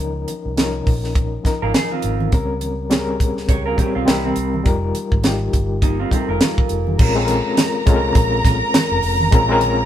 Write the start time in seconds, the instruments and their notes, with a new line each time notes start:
Already playing: reed electric piano F3 C#4 D#4 A#4
0.00 fingered electric bass C#2
0.28 closed hi-hat, muted conga
0.45 fingered electric bass C2
0.56 reed electric piano F3 C#4 D#4 A#4, snare, closed hi-hat, high conga
0.86 fingered electric bass A#1, kick, open hi-hat, low conga
1.04 snare
1.15 kick, closed hi-hat
1.43 reed electric piano C#3 F3 D#4 A#4, muted fingered electric bass stroke, kick, snare, closed hi-hat, muted conga
1.62 fingered electric bass G#1, clean electric guitar F4 A#4
1.74 clean electric guitar D#4 G#4, snare, closed hi-hat, high conga
1.91 clean electric guitar C4 F4, high conga
2.02 fingered electric bass G#1, closed hi-hat
2.21 high conga
2.32 fingered electric bass C#2, reed electric piano G3 C4 C#4 A#4, kick, closed hi-hat, muted conga
2.61 closed hi-hat, muted conga
2.89 reed electric piano G3 C4 C#4 G#4, snare, closed hi-hat, high conga
2.99 reed electric piano A#4
3.20 kick, closed hi-hat, low conga
3.37 snare
3.49 fingered electric bass C#2, clean electric guitar G4 C#5, kick, closed hi-hat
3.66 clean electric guitar F4 A#4
3.77 reed electric piano G3 C4 C#4 A#4, clean electric guitar C#4 G4, kick, closed hi-hat, muted conga, low conga
3.95 fingered electric bass C2, clean electric guitar C4 F4
4.05 fingered electric bass C2, reed electric piano G3 C4 E4 A#4, clean electric guitar A#3 E4, snare, closed hi-hat, high conga
4.24 clean electric guitar G3 C4, high conga
4.36 fingered electric bass C2, closed hi-hat
4.54 high conga
4.64 fingered electric bass F1, reed electric piano G3 D#4 F4 A#4, kick, closed hi-hat
4.95 closed hi-hat, muted conga
5.12 fingered electric bass G#1, kick
5.23 reed electric piano G3 D#4 F4 G4, snare, closed hi-hat, high conga
5.53 fingered electric bass G1, kick, closed hi-hat, low conga
5.82 clean electric guitar A#3 D#4, kick, closed hi-hat
5.99 clean electric guitar C4 F4
6.11 reed electric piano G3 D#4 F4 A4, clean electric guitar C4 G4, muted fingered electric bass stroke, kick, closed hi-hat, muted conga, low conga
6.20 reed electric piano A#4
6.28 fingered electric bass F1, clean electric guitar F4 A#4
6.41 snare, closed hi-hat, high conga
6.58 kick, high conga
6.69 fingered electric bass F1, closed hi-hat
6.87 high conga
6.98 fingered electric bass A#1, reed electric piano G#3 C4 C#4 F4 A#4, violin section A#4 A#5, kick, crash, muted conga
7.15 reed electric piano G#3 C4 C#4 F4 A4
7.25 reed electric piano A#4, closed hi-hat, muted conga
7.57 snare, closed hi-hat, high conga
7.86 fingered electric bass C2, reed electric piano G#3 C4 C#4 F4 A4, kick, closed hi-hat, low conga
7.96 reed electric piano A#4
8.15 fingered electric bass A#1, kick, closed hi-hat
8.45 fingered electric bass A#1, kick, snare, closed hi-hat, muted conga, low conga
8.74 snare, closed hi-hat, high conga
8.91 fingered electric bass F1
9.03 fingered electric bass F1, open hi-hat
9.20 high conga
9.31 fingered electric bass A#1, reed electric piano G#3 C4 C#4 F4 A#4, kick, closed hi-hat
9.49 reed electric piano G#3 C4 C#4 F4 A#4
9.61 closed hi-hat, muted conga